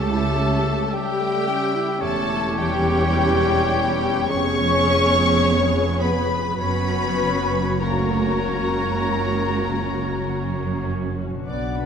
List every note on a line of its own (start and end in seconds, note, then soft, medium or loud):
0.00 0.73 C#2 medium
0.00 2.07 C#3 medium
0.00 0.89 A3 medium
0.00 0.34 C#4 medium
0.00 1.45 E4 medium
0.00 0.87 G4 medium
0.00 0.91 G4 medium
0.00 1.98 G4 medium
0.00 0.91 A4 medium
0.00 0.87 E5 medium
0.00 0.89 A5 medium
0.00 0.91 A5 loud
0.09 0.37 E4 medium
0.36 3.69 C#4 medium
0.36 0.63 C#4 medium
0.64 0.91 A3 medium
0.90 1.19 G3 medium
0.90 2.02 G3 medium
0.90 2.02 G4 medium
0.90 3.10 G4 medium
0.90 2.00 G4 medium
0.90 2.02 E5 medium
0.90 2.02 G5 medium
0.90 2.03 G5 loud
1.19 1.47 A3 medium
1.46 1.74 C#4 medium
1.46 4.34 E4 medium
1.74 2.02 E4 medium
2.00 4.25 E1 medium
2.00 4.25 E2 loud
2.00 4.34 E2 medium
2.00 2.56 A3 medium
2.00 4.25 C#4 medium
2.00 4.30 G4 medium
2.00 4.25 G4 medium
2.00 2.56 A4 medium
2.00 4.27 C#5 medium
2.00 2.57 A5 medium
2.00 2.57 A5 loud
2.57 4.34 E3 medium
2.57 4.30 G3 loud
2.57 4.26 G4 medium
2.57 4.29 G5 medium
2.57 4.27 G5 loud
3.70 5.98 C#4 medium
4.28 6.59 F1 medium
4.28 6.59 F2 medium
4.28 6.64 F2 medium
4.28 6.59 B3 medium
4.28 5.99 C#4 loud
4.28 6.30 G#4 medium
4.28 6.59 G#4 medium
4.28 6.25 C#5 medium
4.28 6.00 C#5 loud
4.28 5.72 C#6 loud
4.28 6.01 C#6 loud
4.87 6.64 F3 medium
5.42 6.63 G#4 medium
6.00 6.44 B3 medium
6.00 8.41 C#4 medium
6.00 6.60 B4 medium
6.00 6.57 B5 medium
6.00 6.58 B5 loud
6.57 11.23 F#1 medium
6.57 7.66 F#2 medium
6.57 9.05 F#2 medium
6.57 7.79 B3 medium
6.57 7.79 C#4 medium
6.57 7.79 F#4 medium
6.57 7.77 F#4 medium
6.57 7.80 B4 medium
6.57 7.76 C#5 medium
6.57 7.78 B5 medium
6.57 7.79 B5 loud
7.21 9.68 C#3 medium
7.80 8.39 D2 medium
7.80 10.89 A#3 medium
7.80 11.23 C#4 medium
7.80 11.23 F#4 medium
7.80 11.11 F#4 medium
7.80 10.28 F#4 medium
7.80 10.85 A#4 medium
7.80 11.11 C#5 medium
7.80 10.88 A#5 medium
7.80 10.89 A#5 medium
8.42 10.28 C#2 medium
8.42 10.88 C#4 medium
9.06 11.53 F#2 medium
9.69 11.53 C#3 medium
10.27 11.47 F#2 medium
10.27 11.38 F#4 medium
10.89 11.53 C#4 medium
11.30 11.86 B2 medium
11.35 11.86 D4 soft
11.39 11.86 F#4 soft
11.44 11.75 B3 medium
11.44 11.86 B4 soft
11.44 11.86 F#5 medium
11.48 11.86 B1 medium
11.48 11.75 D5 medium
11.48 11.86 D5 medium
11.48 11.86 F#5 medium
11.48 11.75 D6 medium
11.76 11.86 D4 soft
11.76 11.86 B4 soft
11.76 11.86 B5 soft